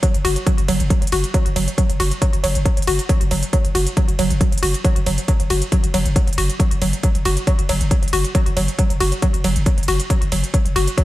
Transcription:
0.03 F#3, kick, closed hi-hat
0.14 F#1, closed hi-hat
0.25 F#1 F#4, open hi-hat, ride
0.36 closed hi-hat
0.47 F#3, kick, closed hi-hat
0.58 F#1, closed hi-hat
0.68 F#1 F#3, open hi-hat, ride
0.80 F#1, closed hi-hat
0.90 F#3, kick, closed hi-hat
1.02 F#1, closed hi-hat
1.07 closed hi-hat
1.12 F#1 F#4, open hi-hat, ride
1.24 closed hi-hat
1.34 F#3, kick, closed hi-hat
1.46 F#1, closed hi-hat
1.56 F#1 F#3, open hi-hat, ride
1.68 closed hi-hat
1.78 F#3, kick, closed hi-hat
1.89 F#1, closed hi-hat
2.00 F#1 F#4, open hi-hat, ride
2.11 closed hi-hat
2.22 F#3, kick, closed hi-hat
2.33 F#1, closed hi-hat
2.44 F#1 F#3, open hi-hat, ride
2.55 F#1, closed hi-hat
2.65 F#3, kick, closed hi-hat
2.77 F#1, closed hi-hat
2.82 closed hi-hat
2.87 F#1 F#4, open hi-hat, ride
2.99 closed hi-hat
3.09 F#3, kick, closed hi-hat
3.21 F#1, closed hi-hat
3.31 F#1 F#3, open hi-hat, ride
3.43 closed hi-hat
3.53 F#3, kick, closed hi-hat
3.65 F#1, closed hi-hat
3.75 F#1 F#4, open hi-hat, ride
3.87 closed hi-hat
3.97 F#3, kick, closed hi-hat
4.08 F#1, closed hi-hat
4.19 F#1 F#3, open hi-hat, ride
4.30 F#1, closed hi-hat
4.41 F#3, kick, closed hi-hat
4.52 F#1, closed hi-hat
4.58 closed hi-hat
4.63 F#1 F#4, open hi-hat, ride
4.74 closed hi-hat
4.84 F#3, kick, closed hi-hat
4.96 F#1, closed hi-hat
5.06 F#1 F#3, open hi-hat, ride
5.18 closed hi-hat
5.28 F#3, kick, closed hi-hat
5.40 F#1, closed hi-hat
5.50 F#1 F#4, open hi-hat, ride
5.62 closed hi-hat
5.72 F#3, kick, closed hi-hat
5.84 F#1, closed hi-hat
5.94 F#1 F#3, open hi-hat, ride
6.05 F#1, closed hi-hat
6.16 F#3, kick, closed hi-hat
6.27 F#1, closed hi-hat
6.33 closed hi-hat
6.38 F#1 F#4, open hi-hat, ride
6.50 closed hi-hat
6.60 F#3, kick, closed hi-hat
6.71 F#1, closed hi-hat
6.82 F#1 F#3, open hi-hat, ride
6.93 closed hi-hat
7.03 F#3, kick, closed hi-hat
7.15 F#1, closed hi-hat
7.25 F#1 F#4, open hi-hat, ride
7.37 closed hi-hat
7.47 F#3, kick, closed hi-hat
7.59 F#1, closed hi-hat
7.69 F#1 F#3, open hi-hat, ride
7.81 F#1, closed hi-hat
7.91 F#3, kick, closed hi-hat
8.03 F#1, closed hi-hat
8.08 closed hi-hat
8.13 F#1 F#4, open hi-hat, ride
8.25 closed hi-hat
8.35 F#3, kick, closed hi-hat
8.46 F#1, closed hi-hat
8.57 F#1 F#3, open hi-hat, ride
8.68 closed hi-hat
8.79 F#3, kick, closed hi-hat
8.90 F#1, closed hi-hat
9.00 F#1 F#4, open hi-hat, ride
9.12 closed hi-hat
9.22 F#3, kick, closed hi-hat
9.34 F#1, closed hi-hat
9.44 F#1 F#3, open hi-hat, ride
9.56 F#1, closed hi-hat
9.66 F#3, kick, closed hi-hat
9.78 F#1, closed hi-hat
9.83 closed hi-hat
9.88 F#1 F#4, open hi-hat, ride
10.00 closed hi-hat
10.10 F#3, kick, closed hi-hat
10.22 F#1, closed hi-hat
10.32 F#1 F#3, open hi-hat, ride
10.44 closed hi-hat
10.54 F#3, kick, closed hi-hat
10.65 F#1, closed hi-hat
10.76 F#1 F#4, open hi-hat, ride
10.87 closed hi-hat
10.98 F#3, kick, closed hi-hat

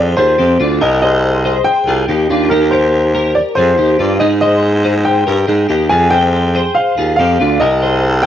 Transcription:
Already playing: F2 G#4 C5
0.17 D#2 F4 G#4 C5
0.38 F2 C4 G4
0.59 D2 D4 F4
0.80 C2 G4 A#4 D#5
1.02 G#4 C5 D#5
1.45 G#4 C5
1.64 G5
1.86 C2 F4 G#4
2.07 D#2 D#4 G4
2.29 D#2 D4 F4
2.49 D#4 G4 A#4
2.71 G4 A#4 C5
3.15 G4 A#4
3.35 D5
3.55 F2 F4 G#4 C5
3.78 D#2 D#4 G4
3.99 G2 D4 F4
4.19 G#2 D#4 G#4 D#5
4.41 G#4 C5 D#5
4.84 G#4 C5
5.05 G5
5.27 G2 G4 A#4
5.47 G#2 D#4 G#4
5.69 D#2 D#4 G4
5.89 F2 F4 G#4 G#5
6.10 G#4 C5 G5
6.55 G#4 C5
6.75 F5
6.97 D#2 F4 G#4
7.16 F2 C4 G4 F5
7.40 D2 D4 F4
7.60 C2 G4 A#4 D#5
7.82 G#4 C5
8.23 G5

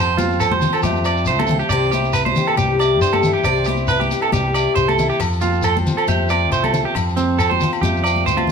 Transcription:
Already playing: F2 F3 C4 A4 C5
0.09 shekere
0.17 C4 F4, high conga, shekere
0.32 shekere
0.40 A4 C5, low agogo, shekere
0.52 C5, high conga
0.62 F4, low conga, shekere
0.73 A4, low agogo, shekere
0.83 F2 A3 G4, high conga, shekere
0.96 shekere
1.04 C4 D5, low agogo, shekere
1.17 shekere
1.25 C#2 A3 C5, shekere
1.38 A4, high conga, low agogo, shekere
1.47 C4, low conga, shekere
1.59 G4, shekere
1.69 C2 C3 C5 D5, low agogo, shekere
1.83 shekere
1.91 E4 G4, high conga, shekere
2.05 shekere
2.13 B4, low agogo, shekere
2.25 C5, high conga
2.36 G4, low conga, shekere
2.47 A4, low agogo
2.57 C2 G3 G4, high conga, shekere
2.79 E4 D5, low agogo, shekere
3.01 G2 G3 C5, shekere
3.13 A4, high conga, low agogo, shekere
3.23 E4, low conga, shekere
3.33 G4
3.44 C2 C3 C5 D5, low agogo, shekere
3.56 shekere
3.64 G4, high conga, shekere
3.69 E4
3.77 shekere
3.88 B4, low agogo, shekere
4.00 G4, high conga, shekere
4.11 G4, shekere
4.22 A4, low agogo
4.32 C2 G3 G4, high conga, shekere
4.54 E4 D5, low agogo, shekere
4.75 C2 C5, muted steel-string acoustic guitar stroke, shekere
4.88 A4, high conga, low agogo, shekere
4.99 E4, low conga, shekere
5.10 G4, shekere
5.20 F2 F3 A4, muted clean electric guitar stroke, low agogo, shekere
5.32 shekere
5.41 C4 F4, high conga, shekere
5.53 shekere
5.62 A4 C5, low agogo, shekere
5.76 high conga, shekere
5.87 F4, low conga, shekere
5.97 A4, low agogo
6.08 F2 A3 G4, high conga, shekere
6.29 C4 D5, low agogo, shekere
6.51 C2 A3 C5, shekere
6.63 A4, high conga, low agogo, shekere
6.74 C4, low conga, shekere
6.85 G4
6.95 F2 F3 A4, muted clean electric guitar stroke, low agogo, shekere
7.09 shekere
7.17 C4, high conga, shekere
7.38 A4 C5, low agogo, shekere
7.50 C5, high conga
7.60 F4, low conga, shekere
7.73 low agogo, shekere
7.81 F2 A3 G4, high conga, shekere
7.97 shekere
8.04 C4 D5, low agogo, shekere
8.16 high conga, shekere
8.25 D2 E3 C5, high conga, shekere
8.37 F4, high conga, low agogo
8.47 low conga

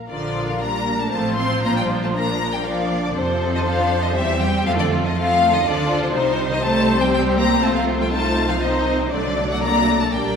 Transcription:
0.09 A#1 D3 F3 D4 F4 A#4 D5
0.49 F3 F5
0.61 G3 A#3 D4 A#5
1.01 A3 A5
1.11 A1 F3 A3 C4 F4 C5 A5
1.38 C4 C6
1.63 A#1 A#3 D4 F4 A#5
1.76 G3 G5
2.03 A3 A5
2.14 A#3 D4 A#4 A#5
2.54 G3 G5
2.65 F3 A#3 D4 D5 F5
3.04 D3 D5
3.16 F2 C3 F3 C4 A4 C5
3.55 D#3 D#5
3.66 F3 D4 F5
4.03 D#3 D#5
4.15 E2 E3 G3 C4 G4 E5
4.40 G3 G5
4.65 F2 F3 A3 F4 A4 F5
4.77 D3 D5
5.02 D#3 D#5
5.15 F3 A3 C4 F4 A4 F5
5.52 D#3 D#5
5.64 D2 D3 F3 D4 F4 D5
6.02 C3 C5
6.13 C2 C3 G3 D#4 C5
6.50 D#3 D#5
6.62 G3 A3 C4 D#4 A5
7.00 G3 G5
7.13 G3 G4 G5
7.38 A#3 A#5
7.62 C2 A3 F4 C5 A5
7.75 F3 F5
8.00 G3 G5
8.11 A3 D#4 F4 C5 A5
8.48 F3 F5
8.60 D#3 C4 D#4 C5 D#5
8.98 C3 C5
9.10 C2 D3 F#3 A3 D4 D5
9.50 F#3 F#5
9.62 A#3 A#5
10.02 A3 A5
10.13 A#1 G3 A#3 D4 D5 G5

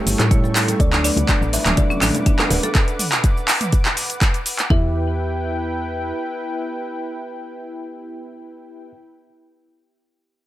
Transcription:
Already playing: G3 A3 C#4 E4 A4 C#5 G5 C#6
0.07 G1, open hi-hat, low bongo, muted conga, cabasa
0.19 A2, clap, closed hi-hat, high bongo, high conga, cabasa
0.31 G3 A3 C#4 E4 A4 C#5, kick, closed hi-hat, cabasa
0.44 A4, low bongo, muted conga, cabasa
0.55 A4, clap, open hi-hat, high bongo, cabasa
0.68 A4, closed hi-hat, low bongo, muted conga, cabasa
0.80 D2 F#3 A3 B3 D4 A4 B4 D5 F#5 D6, kick, closed hi-hat, cabasa
0.93 D4, clap, low bongo, muted conga, cabasa
1.04 D4 D5, open hi-hat, cabasa
1.16 D2, closed hi-hat, high conga, low conga, cabasa
1.28 D4, kick, clap, closed hi-hat, low bongo, muted conga, cabasa
1.41 A1, cabasa
1.53 E5, open hi-hat, low bongo, muted conga, cabasa
1.66 D1 F#3 A3 B3 D4 A4, clap, closed hi-hat, mid tom, cabasa
1.77 D4 D5, kick, closed hi-hat, low bongo, muted conga, high conga, low conga, cabasa
1.90 C#4, cabasa
2.02 A1 D4, clap, mid tom, open hi-hat, muted conga, high conga, cabasa
2.14 closed hi-hat, low bongo, high conga, cabasa
2.26 D4, kick, closed hi-hat, low conga, cabasa
2.39 D4, clap, high bongo, low bongo, muted conga, cabasa
2.50 D1 B4 D5, open hi-hat, cabasa
2.63 A4, closed hi-hat, high bongo, low bongo, muted conga, cabasa
2.75 kick, clap, closed hi-hat, cabasa
2.88 closed hi-hat, cabasa
2.99 mid tom, open hi-hat, cabasa
3.12 clap, closed hi-hat, cabasa
3.24 kick, closed hi-hat, cabasa
3.37 cabasa
3.48 clap, open hi-hat, cabasa
3.61 closed hi-hat, mid tom, cabasa
3.72 kick, closed hi-hat, cabasa
3.85 clap, closed hi-hat, cabasa
3.97 open hi-hat, cabasa
4.10 closed hi-hat, cabasa
4.22 kick, clap, closed hi-hat, cabasa
4.34 closed hi-hat, cabasa
4.46 open hi-hat, cabasa
4.59 clap, closed hi-hat, cabasa
4.70 E2 B3 E4 G4 B4 E5 G5, kick

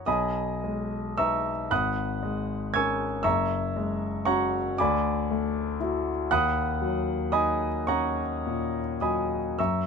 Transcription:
0.06 B1 D#5 G#5 B5 D#6
0.64 G#3
1.18 D#4 B4 E5 A#5 C#6 E6
1.71 G#1 F#5 B5 D#6 F#6
2.23 G#3
2.74 C#4 A#4 G#5 C#6 E6 G#6
3.23 F#1 E5 A#5 C#6 E6
3.77 G#3
4.25 C#4 F#4 C#5 F#5 A#5 C#6
4.78 D2 D5 G#5 B5 D6
5.31 A3
5.80 E4 F#4
6.31 D#2 F#5 B5 D#6 F#6
6.82 F#3
7.32 D#4 D#5 G#5 B5 D#6
7.87 C#4 C#5 F#5 A#5 C#6
8.47 A#2
9.01 F#3 D#5 G#5 B5 D#6
9.59 F#2 E5 A#5 C#6 E6

